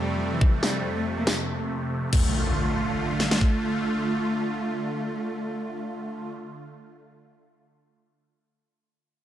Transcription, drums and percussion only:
0.41 kick
0.63 snare
1.27 snare
2.13 kick, crash
3.20 snare
3.31 snare
3.41 kick

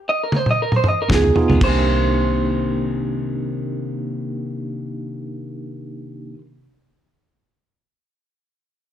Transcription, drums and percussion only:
0.32 high tom
0.46 mid tom
0.72 mid tom
0.84 mid tom
1.10 kick, snare, mid tom
1.24 floor tom
1.36 floor tom
1.50 floor tom
1.61 kick, crash

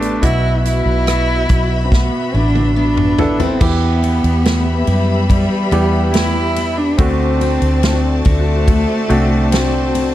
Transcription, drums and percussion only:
0.02 closed hi-hat
0.23 kick, closed hi-hat
0.65 closed hi-hat
1.07 cross-stick, closed hi-hat
1.49 kick, closed hi-hat
1.92 kick, snare
2.55 high tom
2.97 mid tom
3.19 floor tom
3.40 floor tom
3.61 kick, crash
4.04 ride
4.24 ride
4.45 snare, ride
4.87 ride
5.30 kick, ride
5.72 ride
6.14 snare, ride
6.56 ride
6.98 kick, ride
7.41 ride
7.62 ride
7.83 snare, ride
8.25 kick, ride
8.68 kick, ride
9.10 ride
9.52 snare, ride
9.95 ride

